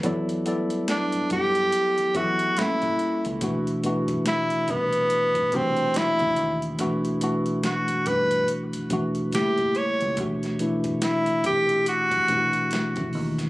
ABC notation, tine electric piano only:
X:1
M:4/4
L:1/8
Q:"Swing 16ths" 1/4=71
K:Em
V:1 name="Tine electric piano"
[F,B,EAd] [G,B,EAd]4 [F,B,EAe] [G,_B,^CEA]2 | [B,,E,A,DF] [B,,E,A,DF]4 [C,E,A,DF]3 | [B,,E,A,DF] [B,,E,A,DF]4 [B,,E,A,DF] [^C,G,A,_B,E]2 | [B,,E,A,DF] [B,,E,A,DE]4 [B,,E,A,DEF]3 |]